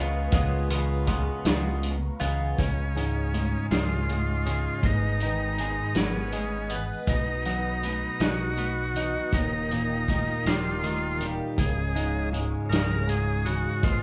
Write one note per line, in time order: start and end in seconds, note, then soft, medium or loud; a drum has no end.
0.00 0.28 C#2 medium
0.00 0.32 C#3 medium
0.00 0.32 G#3 medium
0.00 0.33 B3 medium
0.00 0.32 F4 medium
0.00 2.55 B4 medium
0.00 2.54 F5 medium
0.00 2.55 A#5 medium
0.00 2.54 C#6 medium
0.31 1.28 C#2 medium
0.31 0.71 C#3 medium
0.31 0.70 G#3 medium
0.31 0.69 B3 medium
0.31 0.69 F4 medium
0.31 kick loud
0.31 closed hi-hat medium
0.31 high conga medium
0.69 1.05 C#3 medium
0.69 1.07 G#3 medium
0.69 1.07 B3 medium
0.69 1.07 F4 medium
0.69 closed hi-hat medium
0.69 low conga loud
1.07 1.45 C#3 medium
1.07 1.46 G#3 medium
1.07 1.46 B3 medium
1.07 1.46 F4 medium
1.07 kick medium
1.07 closed hi-hat medium
1.07 high conga loud
1.27 low conga soft
1.45 2.09 C#2 loud
1.45 1.96 C#3 medium
1.45 1.96 G#3 medium
1.45 1.96 B3 medium
1.45 1.95 F4 medium
1.45 snare loud
1.45 closed hi-hat medium
1.45 low conga medium
1.83 closed hi-hat medium
1.83 high conga soft
2.02 high conga medium
2.20 2.53 C#2 medium
2.20 2.58 C#3 medium
2.20 2.58 G#3 medium
2.20 2.58 B3 medium
2.20 2.58 F4 medium
2.20 closed hi-hat medium
2.20 low conga medium
2.40 low conga medium
2.58 4.46 C#2 medium
2.58 3.54 C#2 medium
2.58 3.67 C#4 medium
2.58 4.81 C#5 medium
2.58 4.81 F5 medium
2.58 7.04 G#5 medium
2.58 13.79 D#6 medium
2.58 kick loud
2.58 closed hi-hat medium
2.58 high conga medium
2.95 3.33 G#2 medium
2.95 closed hi-hat medium
2.95 low conga medium
3.34 4.08 G#2 medium
3.34 closed hi-hat medium
3.34 high conga medium
3.52 low conga soft
3.71 4.66 C#2 medium
3.71 4.45 C#3 medium
3.71 4.87 F4 medium
3.71 snare loud
3.71 closed hi-hat medium
3.71 low conga medium
4.09 4.83 G#2 medium
4.09 closed hi-hat soft
4.09 high conga medium
4.30 low conga soft
4.46 4.83 C#3 medium
4.46 closed hi-hat medium
4.46 low conga medium
4.83 5.79 G#1 medium
4.83 6.71 G#2 medium
4.83 6.00 D#4 medium
4.83 9.29 B4 medium
4.83 9.29 D#5 medium
4.83 kick loud
4.83 closed hi-hat medium
4.83 high conga medium
5.20 7.09 D#3 medium
5.20 closed hi-hat medium
5.20 low conga medium
5.58 6.32 G#3 medium
5.58 closed hi-hat medium
5.79 low conga soft
5.95 6.91 G#1 medium
5.95 6.69 B3 medium
5.95 6.77 C#4 medium
5.95 snare medium
5.95 closed hi-hat medium
5.95 low conga medium
6.33 7.08 G#3 medium
6.33 closed hi-hat medium
6.33 high conga medium
6.54 low conga soft
6.70 7.08 B3 medium
6.70 closed hi-hat medium
6.70 low conga medium
7.05 8.03 B1 medium
7.05 8.96 B2 medium
7.05 9.29 F#5 medium
7.05 kick loud
7.05 closed hi-hat medium
7.09 8.24 D#4 medium
7.09 high conga medium
7.46 9.33 F#3 medium
7.46 closed hi-hat medium
7.46 low conga medium
7.83 8.57 B3 medium
7.83 closed hi-hat medium
7.83 high conga medium
8.03 low conga soft
8.20 9.15 B1 medium
8.20 8.96 D#4 medium
8.20 9.37 F#4 medium
8.20 snare loud
8.20 closed hi-hat medium
8.20 low conga medium
8.57 9.33 B3 medium
8.57 closed hi-hat medium
8.57 high conga medium
8.76 low conga soft
8.94 10.46 D#4 medium
8.94 closed hi-hat medium
8.94 low conga medium
9.31 10.28 D#1 medium
9.31 11.21 D#2 medium
9.31 10.49 D#4 medium
9.31 11.55 A#4 medium
9.31 13.78 F5 medium
9.31 11.55 G5 medium
9.31 kick loud
9.31 closed hi-hat medium
9.31 high conga medium
9.69 11.59 A#2 medium
9.69 closed hi-hat medium
9.69 low conga medium
10.07 10.82 D#3 medium
10.07 kick medium
10.07 closed hi-hat medium
10.07 high conga medium
10.45 11.41 D#1 medium
10.45 11.21 G3 medium
10.45 11.26 F4 loud
10.45 snare loud
10.45 closed hi-hat medium
10.45 low conga medium
10.82 11.58 D#3 medium
10.82 closed hi-hat medium
10.82 high conga medium
11.18 closed hi-hat medium
11.18 low conga medium
11.22 11.59 G3 medium
11.57 12.53 C#1 medium
11.57 13.45 C#2 medium
11.57 12.29 G#4 medium
11.57 13.80 C#5 medium
11.57 14.03 G#5 medium
11.57 kick loud
11.57 closed hi-hat medium
11.57 high conga medium
11.95 12.32 G#2 medium
11.95 closed hi-hat medium
11.95 low conga medium
12.33 13.06 G#2 medium
12.33 closed hi-hat medium
12.33 high conga medium
12.69 13.65 C#1 medium
12.69 13.45 C#3 medium
12.69 13.08 A#4 medium
12.69 snare medium
12.69 closed hi-hat medium
12.69 low conga medium
13.08 13.82 G#2 medium
13.08 13.47 G#4 medium
13.08 closed hi-hat medium
13.08 high conga medium
13.45 13.83 C#3 medium
13.45 13.84 F#4 medium
13.45 closed hi-hat medium
13.45 low conga medium
13.83 14.03 G#1 medium
13.83 14.03 G#2 medium
13.83 14.03 F4 medium
13.83 14.03 B4 medium
13.83 14.03 D#5 medium
13.83 14.03 D#6 medium
13.83 kick loud
13.83 closed hi-hat medium
13.83 high conga medium